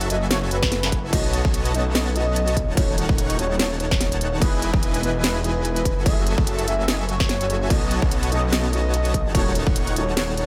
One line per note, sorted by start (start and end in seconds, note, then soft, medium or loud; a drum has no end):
0.01 closed hi-hat medium
0.10 0.49 F#1 medium
0.10 0.49 F#3 medium
0.10 0.49 F#4 medium
0.10 0.49 A4 medium
0.10 0.23 D#5 medium
0.10 0.49 E5 medium
0.10 0.49 G#5 medium
0.10 closed hi-hat medium
0.31 0.44 C#5 medium
0.31 snare loud
0.31 closed hi-hat medium
0.51 1.14 F#1 loud
0.51 1.11 F#3 medium
0.51 1.11 F#4 medium
0.51 1.11 A4 medium
0.51 1.06 B4 loud
0.51 1.11 E5 medium
0.51 1.11 G#5 medium
0.51 closed hi-hat medium
0.63 kick loud
0.63 snare medium
0.72 snare medium
0.72 closed hi-hat medium
0.83 snare medium
0.83 closed hi-hat medium
0.92 kick medium
0.92 closed hi-hat medium
1.11 1.43 B1 loud
1.11 1.71 A3 loud
1.11 1.42 B3 loud
1.11 1.72 C#4 medium
1.11 1.73 D#4 medium
1.11 1.42 F#4 medium
1.11 1.73 F#4 loud
1.11 1.42 C#5 medium
1.11 1.42 D#5 medium
1.11 1.31 D#5 loud
1.11 1.42 A5 loud
1.11 kick loud
1.11 closed hi-hat medium
1.11 crash medium
1.33 closed hi-hat medium
1.45 1.73 B1 medium
1.45 1.72 A5 loud
1.45 kick loud
1.54 closed hi-hat medium
1.65 closed hi-hat medium
1.73 2.66 B1 medium
1.73 2.13 A3 medium
1.73 2.56 B3 medium
1.73 2.13 C#4 medium
1.73 2.14 D#4 medium
1.73 2.56 F#4 medium
1.73 2.56 C#5 medium
1.73 1.87 D#5 loud
1.73 2.56 D#5 medium
1.73 2.56 A5 loud
1.73 closed hi-hat medium
1.95 2.08 D#5 loud
1.95 snare loud
1.95 closed hi-hat medium
1.95 crash soft
2.15 2.24 A3 medium
2.15 2.24 C#4 medium
2.15 2.24 D#4 medium
2.15 2.25 F#4 medium
2.15 2.70 D#5 loud
2.15 closed hi-hat medium
2.36 closed hi-hat medium
2.48 closed hi-hat medium
2.57 kick medium
2.57 closed hi-hat medium
2.68 3.07 D#1 loud
2.68 3.06 D#3 loud
2.68 3.06 D#4 medium
2.68 3.06 C#5 medium
2.68 3.06 F#5 loud
2.68 3.06 A5 loud
2.75 3.35 A3 medium
2.75 3.36 C#4 medium
2.75 3.37 D#4 medium
2.75 2.95 C#5 loud
2.75 kick loud
2.75 closed hi-hat medium
2.75 crash soft
2.79 3.38 F#4 loud
2.98 closed hi-hat medium
3.09 3.37 D#1 medium
3.09 kick loud
3.18 closed hi-hat medium
3.30 closed hi-hat medium
3.37 4.40 D#1 medium
3.37 4.39 D#3 medium
3.37 4.38 A3 medium
3.37 4.39 C#4 medium
3.37 4.39 D#4 medium
3.37 4.40 F#4 medium
3.37 3.52 C#5 medium
3.37 4.39 C#5 medium
3.37 4.39 F#5 medium
3.37 4.39 A5 medium
3.37 closed hi-hat medium
3.59 3.72 C#5 medium
3.59 snare loud
3.59 closed hi-hat medium
3.59 crash soft
3.80 4.34 C#5 loud
3.80 closed hi-hat medium
3.91 kick loud
3.91 snare medium
4.01 snare medium
4.01 closed hi-hat medium
4.12 closed hi-hat medium
4.21 closed hi-hat medium
4.40 4.71 E1 loud
4.40 5.00 B3 loud
4.40 5.01 D#4 medium
4.40 4.71 E4 medium
4.40 5.01 E4 medium
4.40 5.02 G#4 loud
4.40 4.60 B4 loud
4.40 4.71 B4 medium
4.40 4.71 D#5 medium
4.40 4.71 G#5 loud
4.40 kick loud
4.40 closed hi-hat medium
4.40 crash soft
4.62 closed hi-hat medium
4.74 5.01 E1 loud
4.74 5.01 E3 loud
4.74 5.01 E4 loud
4.74 5.01 B4 medium
4.74 5.01 D#5 medium
4.74 5.01 G#5 loud
4.74 kick loud
4.83 closed hi-hat medium
4.94 closed hi-hat medium
5.02 5.95 E1 medium
5.02 5.94 E3 medium
5.02 5.42 B3 medium
5.02 5.94 E4 medium
5.02 5.42 E4 medium
5.02 5.94 B4 medium
5.02 5.16 B4 medium
5.02 5.43 B4 medium
5.02 5.42 D#5 medium
5.02 5.94 D#5 medium
5.02 5.94 G#5 loud
5.02 closed hi-hat medium
5.24 5.37 B4 medium
5.24 snare loud
5.24 closed hi-hat medium
5.24 crash soft
5.43 5.52 B3 medium
5.43 5.53 D#4 medium
5.43 5.53 E4 medium
5.43 5.53 G#4 medium
5.43 6.08 B4 loud
5.43 closed hi-hat medium
5.65 closed hi-hat medium
5.76 closed hi-hat medium
5.85 kick medium
5.85 closed hi-hat medium
5.97 6.36 F#1 loud
5.97 6.35 F#3 loud
5.97 6.35 F#4 medium
5.97 6.35 A4 medium
5.97 6.35 E5 medium
5.97 6.35 G#5 loud
6.04 6.64 A3 medium
6.04 6.65 C#4 medium
6.04 6.66 E4 medium
6.04 6.66 G#4 loud
6.04 6.24 E5 loud
6.04 kick loud
6.04 closed hi-hat medium
6.04 crash soft
6.27 closed hi-hat medium
6.38 6.66 F#1 loud
6.38 6.65 F#3 medium
6.38 6.65 F#4 medium
6.38 6.65 A4 medium
6.38 6.65 E5 medium
6.38 kick loud
6.47 closed hi-hat medium
6.59 closed hi-hat medium
6.66 7.69 F#1 medium
6.66 7.68 F#3 medium
6.66 7.67 A3 medium
6.66 7.68 C#4 medium
6.66 7.68 E4 medium
6.66 7.68 F#4 medium
6.66 7.68 A4 medium
6.66 6.90 E5 loud
6.66 7.68 E5 medium
6.66 7.68 G#5 medium
6.66 7.69 G#5 medium
6.66 closed hi-hat medium
6.88 7.01 D#5 medium
6.88 snare loud
6.88 closed hi-hat medium
6.88 crash soft
7.09 7.72 C#5 loud
7.09 closed hi-hat medium
7.20 kick loud
7.20 snare medium
7.29 snare medium
7.29 closed hi-hat medium
7.41 closed hi-hat medium
7.50 closed hi-hat medium
7.68 8.00 B1 loud
7.68 8.29 A3 loud
7.68 8.00 B3 loud
7.68 8.29 C#4 medium
7.68 8.30 D#4 medium
7.68 8.00 F#4 medium
7.68 8.31 F#4 loud
7.68 8.00 C#5 medium
7.68 7.89 D#5 loud
7.68 8.00 A5 loud
7.68 kick loud
7.68 closed hi-hat medium
7.68 crash soft
7.91 closed hi-hat medium
8.02 8.30 B1 medium
8.02 8.30 B3 loud
8.02 8.30 C#5 medium
8.02 8.30 D#5 medium
8.02 kick loud
8.11 closed hi-hat medium
8.23 closed hi-hat medium
8.31 9.27 B1 loud
8.31 8.70 A3 medium
8.31 9.13 B3 medium
8.31 8.71 C#4 medium
8.31 8.71 D#4 medium
8.31 9.13 F#4 medium
8.31 9.13 C#5 medium
8.31 8.45 D#5 loud
8.31 9.13 D#5 medium
8.31 9.13 A5 loud
8.31 closed hi-hat medium
8.52 8.65 D#5 medium
8.52 snare loud
8.52 closed hi-hat medium
8.52 crash soft
8.72 8.81 A3 medium
8.72 8.82 C#4 medium
8.72 8.82 D#4 medium
8.72 8.82 F#4 medium
8.72 9.27 D#5 loud
8.72 closed hi-hat medium
8.94 closed hi-hat medium
9.05 closed hi-hat medium
9.14 kick medium
9.14 closed hi-hat medium
9.26 9.64 D#1 medium
9.26 9.64 D#3 loud
9.26 9.64 D#4 medium
9.26 9.64 C#5 medium
9.26 9.64 F#5 medium
9.26 9.64 A5 loud
9.33 9.93 A3 medium
9.33 9.94 C#4 medium
9.33 9.95 D#4 medium
9.33 9.95 F#4 loud
9.33 9.53 C#5 loud
9.33 kick loud
9.33 closed hi-hat medium
9.33 crash medium
9.55 closed hi-hat medium
9.67 9.95 D#1 medium
9.67 9.94 D#3 medium
9.67 9.94 D#4 medium
9.67 9.94 C#5 medium
9.67 kick loud
9.76 closed hi-hat medium
9.87 closed hi-hat medium
9.94 10.46 D#1 loud
9.94 10.46 D#3 medium
9.94 10.46 A3 medium
9.94 10.46 C#4 medium
9.94 10.46 D#4 medium
9.94 10.46 F#4 medium
9.94 10.09 C#5 medium
9.94 10.46 C#5 medium
9.94 10.46 F#5 medium
9.94 10.46 A5 medium
9.94 closed hi-hat medium
10.17 10.30 C#5 medium
10.17 snare loud
10.17 closed hi-hat medium
10.17 crash soft
10.37 10.46 C#5 loud
10.37 closed hi-hat medium